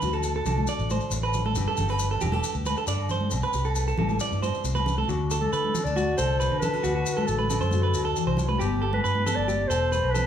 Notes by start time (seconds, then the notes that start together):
Already playing: D3 D4 B4
0.02 D2 F#4, low conga, maracas
0.13 A4, low agogo, maracas
0.23 A4, maracas
0.36 A4
0.45 C2 A3 D4 A4, low conga, low agogo, maracas
0.58 high conga
0.67 D5, maracas
0.79 A1, maracas
0.90 C5, high conga, low agogo, maracas
1.01 maracas
1.11 A1 A2 C5, maracas
1.23 B4, low agogo
1.33 low conga, maracas
1.46 A4, high conga
1.55 G1 G3 D4 G4 B4, low conga, low agogo, maracas
1.68 A4
1.77 G1 A4, low conga, maracas
1.88 B4, low agogo, maracas
1.99 B4, maracas
2.11 A4
2.21 E1 D4 E4 G4, low conga, low agogo, maracas
2.32 G4 A4, high conga
2.43 maracas
2.55 D2, maracas
2.65 B4, high conga, low agogo, maracas
2.77 A4, maracas
2.87 G2 D3 A4 D5, maracas
3.00 low agogo
3.09 C5, low conga, maracas
3.21 high conga
3.31 C2 C3, low agogo, maracas
3.42 B4, maracas
3.53 C2 G4, maracas
3.65 A4, low agogo, maracas
3.75 B4, maracas
3.88 A4, maracas
3.97 A1 G3 E4 A4, low conga, low agogo
4.09 high conga, maracas
4.20 D5, maracas
4.32 G2, maracas
4.42 C5, high conga, low agogo, maracas
4.54 maracas
4.64 C2 C3 C5, maracas
4.75 B4, high conga, low agogo, maracas
4.86 low conga, maracas
4.98 A4, high conga
5.08 D2 D3 D4 F#4, muted clean electric guitar stroke, low agogo, maracas
5.31 D4 A4, maracas
5.41 A4, high conga, low agogo
5.53 D3 B4, maracas
5.64 high conga
5.74 A3 C4, low conga, low agogo, maracas
5.84 D2 D4 D5, maracas
5.96 F#4, high conga, maracas
6.17 C2 A4 C5, low agogo, maracas
6.40 A2 B4, maracas
6.52 D3, low agogo
6.59 E4 A4 B4, low conga, maracas
6.73 F#4
6.83 D2 D3 F#4 A4, low agogo, maracas
6.95 F#4
7.06 F#4, maracas
7.17 A4, high conga, low agogo
7.27 A1 A4, maracas
7.39 B4, high conga
7.50 A3 D4 A4, low conga, low agogo, maracas
7.61 F#2 C5, maracas
7.71 F#4, high conga, maracas
7.83 B4
7.94 D2 F#4, low agogo, maracas
8.05 A4
8.16 E3, maracas
8.27 C2 C5, low agogo
8.37 F#3, low conga, maracas
8.49 B4, high conga
8.59 G1 G3 B3 G4, low agogo, maracas
8.82 B3 A4
8.93 B4, high conga, low agogo
9.04 G2 B4, maracas
9.15 high conga
9.26 B3 G4 A4, low conga, low agogo, maracas
9.35 G1 D5
9.48 G4, high conga, maracas
9.68 E1 A4 C5, low agogo, maracas
9.72 G4
9.92 A3 B4, maracas
10.03 B1, low agogo
10.12 A4 B4, maracas
10.16 B3, low conga